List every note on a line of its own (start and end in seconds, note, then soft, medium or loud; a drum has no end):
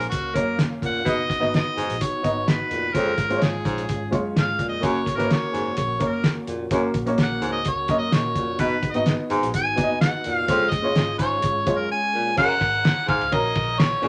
0.00 1.02 A#3 medium
0.00 1.02 C#4 medium
0.00 1.03 F5 medium
0.00 closed hi-hat medium
0.09 0.31 C#2 medium
0.09 0.36 F#4 medium
0.09 kick medium
0.09 closed hi-hat medium
0.34 0.61 F#2 loud
0.34 0.80 A#3 medium
0.34 0.81 C#4 medium
0.34 0.81 F#4 medium
0.34 0.59 A#4 medium
0.34 0.81 C#5 medium
0.34 kick medium
0.34 closed hi-hat medium
0.59 0.78 F#1 medium
0.59 snare loud
0.59 closed hi-hat medium
0.81 1.01 F1 medium
0.81 1.01 A#2 medium
0.81 kick medium
0.81 closed hi-hat medium
0.86 1.11 F#5 loud
1.04 1.35 F#1 loud
1.04 1.24 B2 loud
1.04 2.92 B3 medium
1.04 1.28 B3 medium
1.04 2.92 D#4 medium
1.04 1.29 D#4 medium
1.04 2.92 F#4 medium
1.04 1.29 F#4 medium
1.04 1.29 D#5 medium
1.04 kick loud
1.04 closed hi-hat medium
1.09 1.54 D#5 loud
1.30 kick medium
1.30 snare soft
1.30 closed hi-hat medium
1.40 1.61 G#1 medium
1.40 1.94 B3 medium
1.40 1.94 D#4 medium
1.40 1.94 F#4 medium
1.40 1.94 D#5 medium
1.40 snare soft
1.54 2.03 D#5 medium
1.54 snare medium
1.54 closed hi-hat medium
1.77 1.86 F#1 medium
1.77 1.96 G#2 medium
1.77 closed hi-hat medium
1.89 1.98 A#1 medium
1.89 closed hi-hat medium
2.01 2.50 C#5 medium
2.01 kick medium
2.01 closed hi-hat loud
2.13 muted picked electric bass stroke soft
2.23 2.62 G#1 medium
2.23 2.69 B3 medium
2.23 2.69 D#4 medium
2.23 2.69 F#4 medium
2.23 2.69 D#5 medium
2.23 kick medium
2.23 closed hi-hat medium
2.48 2.96 B4 medium
2.48 snare loud
2.48 closed hi-hat medium
2.71 2.90 F1 medium
2.71 2.90 A#2 medium
2.71 closed hi-hat medium
2.94 3.14 F#1 loud
2.94 3.14 F2 medium
2.94 3.17 G#3 medium
2.94 4.81 G#3 medium
2.94 8.56 C#4 medium
2.94 3.17 C#4 medium
2.94 4.81 F4 medium
2.94 3.18 F4 medium
2.94 3.45 A#4 loud
2.94 3.18 C#5 medium
2.94 kick loud
2.94 closed hi-hat loud
3.17 3.37 G#1 medium
3.17 kick medium
3.17 snare soft
3.17 closed hi-hat medium
3.29 3.82 G#3 medium
3.29 3.83 C#4 medium
3.29 3.83 F4 medium
3.29 3.36 C5 medium
3.29 closed hi-hat soft
3.36 3.86 C#5 medium
3.42 3.61 G#1 medium
3.42 4.13 G#4 medium
3.42 snare loud
3.42 closed hi-hat medium
3.65 3.84 A#1 medium
3.65 3.84 G#2 medium
3.65 kick loud
3.65 closed hi-hat medium
3.78 closed hi-hat medium
3.89 4.08 G#1 medium
3.89 kick medium
3.89 closed hi-hat medium
4.11 4.31 F#2 loud
4.11 4.57 G#3 medium
4.11 4.57 C#4 medium
4.11 4.58 F4 medium
4.11 4.58 C#5 loud
4.11 kick medium
4.11 closed hi-hat medium
4.36 4.55 G#2 medium
4.36 4.66 F5 loud
4.36 snare loud
4.36 closed hi-hat medium
4.59 4.78 A#2 medium
4.59 kick medium
4.59 closed hi-hat medium
4.69 4.87 D#5 medium
4.80 5.11 F#1 loud
4.80 5.02 F#2 loud
4.80 5.04 A#3 medium
4.80 8.57 A#3 medium
4.80 5.05 C#4 medium
4.80 5.05 F#4 medium
4.80 10.45 F#4 medium
4.80 5.05 C#5 medium
4.80 kick loud
4.80 closed hi-hat medium
4.85 5.18 C#5 loud
5.06 kick medium
5.06 snare soft
5.06 closed hi-hat medium
5.17 5.27 G#1 medium
5.17 5.71 A#3 medium
5.17 5.71 C#4 medium
5.17 5.71 F#4 medium
5.17 5.31 A#4 medium
5.17 5.24 B4 medium
5.17 snare soft
5.17 closed hi-hat medium
5.24 5.74 C#5 medium
5.31 5.75 C#5 medium
5.31 snare loud
5.31 closed hi-hat medium
5.41 muted picked electric bass stroke soft
5.53 5.73 F#1 medium
5.53 5.72 G#2 medium
5.53 closed hi-hat medium
5.77 5.97 A#1 medium
5.77 6.11 C#5 medium
5.77 kick medium
5.77 closed hi-hat medium
5.99 6.46 A#3 medium
5.99 6.46 C#4 medium
5.99 6.46 F#4 medium
5.99 6.46 C#5 medium
5.99 kick loud
5.99 closed hi-hat medium
6.09 6.32 A#4 medium
6.24 snare loud
6.24 closed hi-hat loud
6.47 6.67 F1 medium
6.47 6.66 A#2 medium
6.47 closed hi-hat medium
6.71 6.90 F#1 medium
6.71 6.90 F#2 medium
6.71 6.94 A#3 medium
6.71 6.94 C#4 medium
6.71 6.94 F#4 medium
6.71 6.95 C#5 medium
6.71 kick loud
6.71 closed hi-hat medium
6.94 7.14 A#1 medium
6.94 kick loud
6.94 closed hi-hat medium
7.06 7.60 A#3 medium
7.06 7.60 C#4 medium
7.06 7.60 F#4 medium
7.06 7.60 C#5 medium
7.06 closed hi-hat medium
7.18 7.38 A#1 medium
7.18 snare loud
7.18 closed hi-hat medium
7.22 7.50 F#5 medium
7.41 7.61 C#2 medium
7.41 7.61 G#2 medium
7.41 closed hi-hat medium
7.52 7.70 D#5 medium
7.65 7.85 C#2 medium
7.65 kick medium
7.65 closed hi-hat medium
7.69 8.00 C#5 medium
7.88 8.08 F#2 medium
7.88 8.35 A#3 medium
7.88 8.35 C#4 medium
7.88 8.35 F#4 medium
7.88 8.35 D#5 medium
7.88 kick loud
7.88 closed hi-hat medium
7.99 8.15 D#5 medium
8.12 8.32 A#2 medium
8.12 8.59 C#5 medium
8.12 snare loud
8.12 closed hi-hat loud
8.36 8.55 A#2 medium
8.36 kick medium
8.36 closed hi-hat medium
8.58 8.88 F#1 loud
8.58 8.78 B2 medium
8.58 10.46 B3 medium
8.58 8.82 B3 medium
8.58 10.46 D#4 medium
8.58 8.83 D#4 medium
8.58 8.83 F#4 medium
8.58 8.94 B4 medium
8.58 8.83 D#5 medium
8.58 kick loud
8.58 closed hi-hat medium
8.83 kick loud
8.83 closed hi-hat medium
8.92 9.14 G#1 medium
8.92 9.48 B3 medium
8.92 9.48 D#4 medium
8.92 9.49 F#4 medium
8.92 9.15 D#5 medium
8.92 closed hi-hat medium
8.96 9.49 D#5 medium
9.06 snare medium
9.06 closed hi-hat medium
9.30 9.40 F#1 medium
9.30 9.50 G#2 medium
9.30 closed hi-hat medium
9.43 9.52 A#1 loud
9.43 closed hi-hat medium
9.54 9.73 G#1 medium
9.54 9.99 G#5 loud
9.54 kick medium
9.54 closed hi-hat loud
9.76 10.16 F#1 medium
9.76 10.22 B3 medium
9.76 10.23 D#4 medium
9.76 10.23 F#4 medium
9.76 9.83 D5 medium
9.76 kick loud
9.76 closed hi-hat medium
9.83 10.26 D#5 medium
10.01 10.34 F#5 medium
10.01 snare loud
10.01 closed hi-hat loud
10.24 10.45 F1 medium
10.24 10.44 A#2 medium
10.24 closed hi-hat medium
10.34 10.47 F5 medium
10.47 10.68 F#1 loud
10.47 10.68 F2 medium
10.47 10.71 G#3 medium
10.47 12.36 G#3 medium
10.47 12.35 C#4 medium
10.47 10.71 C#4 medium
10.47 12.35 F4 medium
10.47 10.72 F4 medium
10.47 10.72 C#5 medium
10.47 10.71 F5 loud
10.47 kick loud
10.47 closed hi-hat medium
10.70 10.91 F1 medium
10.70 11.17 D#5 loud
10.70 kick medium
10.70 snare soft
10.70 closed hi-hat medium
10.82 11.36 G#3 medium
10.82 11.37 C#4 medium
10.82 11.37 F4 medium
10.82 11.37 C#5 medium
10.95 11.14 G#1 medium
10.95 snare loud
10.95 closed hi-hat medium
11.18 11.38 G#1 medium
11.18 11.38 G#2 medium
11.18 11.80 C#5 loud
11.18 kick loud
11.18 closed hi-hat medium
11.42 11.62 G#1 medium
11.42 kick loud
11.42 closed hi-hat loud
11.66 11.86 F#2 medium
11.66 12.12 G#3 medium
11.66 12.12 C#4 medium
11.66 12.12 F4 medium
11.66 12.13 C#5 medium
11.66 kick loud
11.66 closed hi-hat medium
11.78 11.90 A#4 medium
11.91 12.35 G#5 loud
12.14 12.33 A#2 medium
12.36 12.57 F#1 medium
12.36 12.57 F#2 medium
12.36 12.98 C#4 medium
12.36 12.98 F#4 medium
12.36 12.44 G#4 medium
12.36 13.04 F#5 loud
12.36 kick loud
12.36 crash loud
12.44 13.02 A#4 medium
12.61 12.89 G#1 medium
12.61 kick loud
12.61 snare soft
12.61 ride medium
12.85 snare medium
12.85 ride medium
13.07 13.18 F#1 medium
13.07 13.27 G#2 medium
13.07 13.35 F5 loud
13.07 kick loud
13.07 ride medium
13.21 13.30 C#2 medium
13.21 ride soft
13.32 13.51 A#1 medium
13.32 13.77 C#4 medium
13.32 13.78 F#4 medium
13.32 13.78 A#4 medium
13.32 13.80 D#5 loud
13.32 kick medium
13.32 ride medium
13.55 13.94 A#1 medium
13.55 kick loud
13.55 ride medium
13.79 14.08 C#5 loud
13.79 snare loud
13.79 ride medium
14.02 14.08 A#1 medium
14.02 14.08 A#2 medium
14.02 14.08 C#4 medium
14.02 14.08 F#4 medium
14.02 14.08 G#4 medium
14.02 ride medium